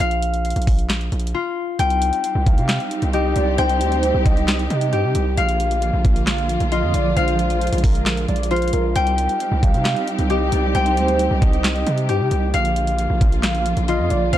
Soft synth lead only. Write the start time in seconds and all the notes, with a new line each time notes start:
2.46 F5
3.13 D#5
3.36 D5
3.58 C5
4.25 D#5
6.05 F5
6.72 D#5
6.94 D5
7.17 C5
7.84 A#4
8.28 D5
8.51 C5
8.73 A#4
9.63 F5
10.30 D#5
10.52 D5
10.75 C5
11.42 D#5
13.21 F5
13.88 D#5
14.11 D5
14.33 C5